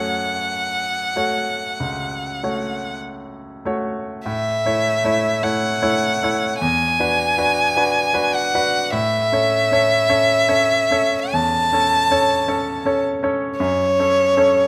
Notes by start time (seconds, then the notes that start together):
Already playing: F#2 A3 F#4 C#5 F#5
1.16 A3 F#4 C#5
1.80 C#2
2.43 A3 F#4 C#5
3.65 A3 F#4 C#5
4.26 A2 E5
4.66 A3 E4 C#5
5.04 A3 E4 C#5
5.43 A3 E4 C#5 F#5
5.82 A3 E4 C#5
6.23 A3 E4 C#5
6.59 E2 G#5
7.00 D4 F#4 B4
7.38 D4 F#4 B4
7.76 D4 F#4 B4
8.14 D4 F#4 B4
8.35 F#5
8.55 D4 F#4 B4
8.92 A2 E5
9.32 C#4 A4 C#5
9.71 C#4 A4 C#5
10.09 C#4 A4 C#5
10.48 C#4 A4 C#5
10.91 C#4 A4 C#5
11.33 E2 A5
11.73 C#4 A4 C#5
12.11 C#4 A4 C#5
12.48 C#4 A4 C#5
12.86 C#4 A4 C#5
13.23 C#4 A4 C#5
13.57 F#2 C#5
13.99 C#4 A4 C#5
14.37 C#4 A4 C#5